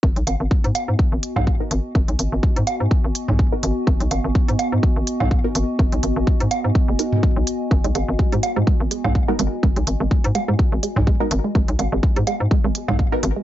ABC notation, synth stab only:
X:1
M:4/4
L:1/16
Q:"Swing 16ths" 1/4=125
K:G#m
V:1 name="Synth stab"
z12 z [B,DFA] z2 | z12 z [B,DFA] z2 | z12 z [B,DFA] z2 | z8 z2 [B,DFA] z4 z |
z12 z [B,DFA] z2 | z12 z [B,DFA] z2 | z12 z [B,DFA] z2 |]